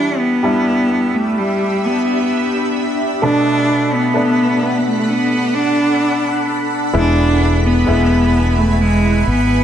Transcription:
Already playing: E3 G3 D4 E4 G4 E5 B5
0.20 B3
0.43 G3 D4 E4
1.13 A3
1.38 G3
1.85 B3
3.22 B2 A3 B3 D4 A4 F#5
3.94 B3
4.14 A3 B3 D4
4.86 A3
5.10 B3
5.54 D4
6.93 E1 E3 G#3 B3 E4 B4 G#5
6.98 D4
7.66 B3
7.86 E1 G#3 B3 E4
8.58 A3
8.80 G#3 C#6
9.27 G#1 B3

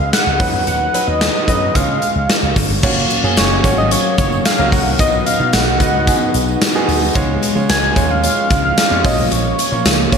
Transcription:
Already playing: G#3 C#4 F4 G#4 B4
0.13 F#5, snare, closed hi-hat
0.27 C#2
0.39 D#2 F#3 C#4 D#4 B4, kick, open hi-hat
0.53 E2
0.67 D#2 F#5, closed hi-hat
0.94 F#3 C#4 D#4 B4, closed hi-hat
1.07 D#2 D#5
1.21 snare, closed hi-hat
1.48 F#2 F#3 C#4 D#4 B4 D#5, kick, closed hi-hat
1.75 C#2 G#3 C#4 F4 C#5 F5, kick, closed hi-hat
1.89 C#3
2.02 closed hi-hat
2.16 C#2
2.29 snare, closed hi-hat
2.43 C#2
2.56 G#1, kick, open hi-hat
2.70 G1
2.83 F#1 F#3 A#3 C#4 F#4 C#5, kick, crash, tambourine
2.96 tambourine
3.10 closed hi-hat, tambourine
3.23 F#2 A#3 C#4 F#4 G#4, tambourine
3.37 F#1 C#5, snare, closed hi-hat, tambourine
3.64 G#1 A#3 C#4 F#4 C#5, kick, closed hi-hat, tambourine
3.78 D#5
3.91 A#3 C#4 F#4 C#5, closed hi-hat, tambourine
4.18 F#1 C#5, kick, closed hi-hat, tambourine
4.32 tambourine
4.45 F5, snare, closed hi-hat, tambourine
4.58 C#2 A#3 C#4 F#4 A#4
4.72 C#2 F#5, kick, open hi-hat, tambourine
4.86 C2, tambourine
4.99 B1 B3 D#4 F#4 D#5, kick, closed hi-hat, tambourine
5.12 tambourine
5.26 F5, closed hi-hat, tambourine
5.39 B2 B3 D#4 F#4 F5
5.53 B1 F#5, snare, closed hi-hat, tambourine
5.80 C#2 B3 D#4 F#4 D#5, kick, closed hi-hat, tambourine
6.07 B3 D#4 F#4 G#4, kick, closed hi-hat, tambourine
6.34 B1, closed hi-hat, tambourine
6.48 tambourine
6.61 snare, closed hi-hat, tambourine
6.74 B3 D#4 F#4 G#4
6.88 D2, open hi-hat, tambourine
7.02 tambourine
7.15 C#2 F3 G#3 C#4 F4 C#5, kick, closed hi-hat, tambourine
7.42 closed hi-hat, tambourine
7.55 C#3 G#3 C#4 F4 C#5, tambourine
7.69 C#2 G#5, snare, closed hi-hat, tambourine
7.96 D#2 G#3 C#4 F4 C#5, kick, closed hi-hat, tambourine
8.10 F5
8.23 G#3 C#4 F4 C#5, closed hi-hat, tambourine
8.50 C#2, kick, closed hi-hat, tambourine
8.65 F5
8.78 snare, closed hi-hat, tambourine
8.91 F2 G#3 C#4 F4 C#5
9.04 A#1 A#3 C#4 F4 C#5 D#5, kick, open hi-hat, tambourine
9.18 B1, tambourine
9.31 A#1 C#5, closed hi-hat, tambourine
9.44 tambourine
9.58 closed hi-hat, tambourine
9.72 A#2 A#3 C#4 F4 C#5, tambourine
9.85 C#2, snare, closed hi-hat, tambourine
10.12 A#1 A#3 C#4 F4 C#5, kick, closed hi-hat, tambourine

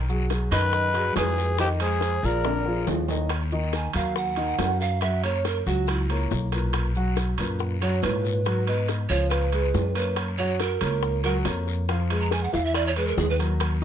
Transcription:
Already playing: B1
0.09 F#3 F#4 G#4, maracas
0.30 F#3 F#4 G#4, high bongo, high timbale, short guiro, maracas
0.51 F#2 D#3 D#4 B4 D#5, high bongo, high timbale, short guiro, maracas
0.73 high bongo, long guiro, maracas
0.94 F#3 F#4 G#4, high bongo, high timbale, maracas
1.16 F2 G#3 F#4 G#4 B4, high bongo, low bongo, high timbale, low timbale, short guiro, maracas
1.38 high bongo, short guiro, maracas
1.58 D#3 D#4 G4 C5 D#5, high bongo, high timbale, long guiro, maracas
1.80 G#3 G#4 C5, high timbale, maracas
2.01 high bongo, high timbale, short guiro, maracas
2.23 A#1 F3 F4 G#4 A#4 D5, high bongo, short guiro, maracas
2.44 D3 D4 D5, high bongo, high timbale, long guiro, maracas
2.66 F3 F4 G#4, high bongo
2.87 D#2, high bongo, low bongo, low timbale, short guiro, maracas
3.08 D#3 D#4 D#5, high bongo, low timbale, short guiro, maracas
3.29 high bongo, high timbale, long guiro, maracas
3.52 D#3 D#4 D#5, maracas
3.73 G#5, high bongo, high timbale, short guiro, maracas
3.93 D#2 F#3 F#4 A#4 F5, high bongo, high timbale, short guiro, maracas
4.16 F#5, high bongo, long guiro, maracas
4.36 D#3 D#4 D#5, high bongo, high timbale, maracas
4.59 F#2 F#3 F#4 A#4, high bongo, low bongo, high timbale, low timbale, short guiro, maracas
4.81 F5, high bongo, short guiro, maracas
5.01 F#3 F#4 E5 F#5, high bongo, high timbale, long guiro, maracas
5.24 A#3 A#4 C#5, high timbale
5.45 A#4, high bongo, high timbale, short guiro, maracas
5.66 C#2 F#3 F#4 F#5, high bongo, short guiro, maracas
5.87 E4, high bongo, high timbale, long guiro, maracas
6.10 A#3 A#4 C#5, high bongo, high timbale
6.31 B1, high bongo, low bongo, short guiro, maracas
6.52 A#2 A#4 B4, high bongo, high timbale, short guiro, maracas
6.73 high bongo, high timbale, long guiro, maracas
6.95 F#3 F#4 F#5, maracas
7.16 high bongo, high timbale, short guiro, maracas
7.38 F#2 A#2 A#4 B4, high bongo, high timbale, short guiro, maracas
7.59 high bongo, long guiro, maracas
7.81 F#3 F#4 C#5 F#5, high bongo, high timbale
8.02 G#2 A#2 B4 C#5, high bongo, low bongo, high timbale, low timbale, short guiro, maracas
8.24 high bongo, short guiro, maracas
8.45 F#3 F#4 F#5, high bongo, high timbale, long guiro, maracas
8.67 B3 B4 D#5, high timbale
8.88 high bongo, high timbale, short guiro, maracas
9.09 C#2 F3 F4 C#5 F5, high bongo, short guiro, maracas
9.30 B4, high bongo, high timbale, long guiro, maracas
9.53 G#3 G#4 B4, high bongo, high timbale, maracas
9.74 F#2, high bongo, low bongo, low timbale, short guiro, maracas
9.95 A#3 A#4 B4 C#5, high bongo, high timbale, short guiro, maracas
10.16 high bongo, high timbale, long guiro, maracas
10.38 F#3 F#4 C#5 F#5
10.60 A#4, high bongo, high timbale, short guiro, maracas
10.81 C#2 A#3 A#4 C#5, high bongo, high timbale, short guiro, maracas
11.03 high bongo, long guiro, maracas
11.23 F#3 F#4 A#4 F#5, high bongo, high timbale, maracas
11.45 F2 A#3 A#4 C#5, high bongo, low bongo, high timbale, short guiro, maracas
11.67 high bongo, short guiro, maracas
11.89 F3 F4 F5, high bongo, high timbale, long guiro, maracas
12.10 G#3 G#4 B4, high timbale
12.21 A#5
12.31 G#5, high bongo, high timbale, short guiro, maracas
12.43 F#5
12.52 E2 E3 E4 E5 F5, high bongo, short guiro, maracas
12.65 E5
12.74 D5, high bongo, high timbale, long guiro, maracas
12.87 C#5
12.96 G#3 G#4 B4, high bongo, high timbale, maracas
13.07 A#4
13.17 D#2 G#4, high bongo, low bongo, low timbale, short guiro, maracas
13.30 B4
13.39 F#3 F#4 A#4, high bongo, high timbale, short guiro, maracas
13.60 high bongo, high timbale, long guiro, maracas

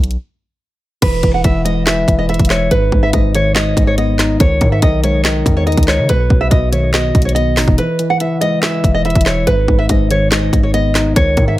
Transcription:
Already playing: B1
0.04 closed hi-hat
0.11 closed hi-hat
1.02 E1 E3 B4, kick, closed hi-hat, crash
1.23 E1 E3, kick, closed hi-hat
1.34 F#5
1.44 E1 E3 E5, kick, closed hi-hat
1.65 G#3 D#5, closed hi-hat
1.86 E3 E5, snare, clap, closed hi-hat
2.08 E1 E3, kick, closed hi-hat
2.19 D#5
2.29 E4 E5, closed hi-hat
2.34 closed hi-hat
2.39 E1, kick, closed hi-hat
2.45 closed hi-hat
2.50 C#5 E5, snare, clap
2.71 G#1 G#2 B4, closed hi-hat
2.92 G#1 G#2, kick
3.03 E5
3.13 G#1 G#2 D#5, kick, closed hi-hat
3.35 D#3 C#5, closed hi-hat
3.55 G#2 D#5, snare, clap, closed hi-hat
3.77 G#1 G#2, kick, closed hi-hat
3.87 C#5
3.98 B3 D#5, closed hi-hat
4.19 D#4, snare, clap, closed hi-hat
4.40 C#2 D#3 C#5, kick, closed hi-hat
4.61 G#2 D#3, kick, closed hi-hat
4.72 E5
4.82 B1 D#3 D#5, kick, closed hi-hat
5.04 G#3 C#5, closed hi-hat
5.24 D#3 D#5, snare, clap, closed hi-hat
5.46 E2 D#3, kick, closed hi-hat
5.57 C#5
5.67 D#4 D#5, closed hi-hat
5.72 closed hi-hat
5.77 C#2, kick, closed hi-hat
5.83 closed hi-hat
5.88 C#5 D#5, snare, clap
5.99 C#3
6.09 B1 B2 B4, closed hi-hat
6.30 B1 B2, kick
6.41 E5
6.51 B1 B2 D#5, kick, closed hi-hat
6.72 D#3 C#5, closed hi-hat
6.94 B2 D#5, snare, clap, closed hi-hat
7.15 B1 B2, kick, closed hi-hat
7.22 C#5, closed hi-hat
7.29 closed hi-hat
7.35 B3 D#5, closed hi-hat
7.57 A1 D#4, snare, clap, open hi-hat
7.68 E1, kick
7.78 E3 B4, closed hi-hat
7.99 E3, closed hi-hat
8.10 F#5
8.20 E3 E5, closed hi-hat
8.41 G#3 D#5, closed hi-hat
8.62 E3 E5, snare, clap, closed hi-hat
8.84 E1 E3, kick, closed hi-hat
8.94 D#5
9.05 E4 E5, closed hi-hat
9.10 closed hi-hat
9.15 E1, kick, closed hi-hat
9.21 closed hi-hat
9.26 C#5 E5, snare, clap
9.47 G#1 G#2 B4, closed hi-hat
9.68 G#1 G#2, kick
9.79 E5
9.89 G#1 G#2 D#5, kick, closed hi-hat
10.11 D#3 C#5, closed hi-hat
10.31 G#2 D#5, snare, clap, closed hi-hat
10.53 G#1 G#2, kick, closed hi-hat
10.63 C#5
10.74 B3 D#5, closed hi-hat
10.95 D#4, snare, clap, closed hi-hat
11.16 C#2 D#3 C#5, kick, closed hi-hat
11.37 G#2 D#3, kick, closed hi-hat
11.48 E5

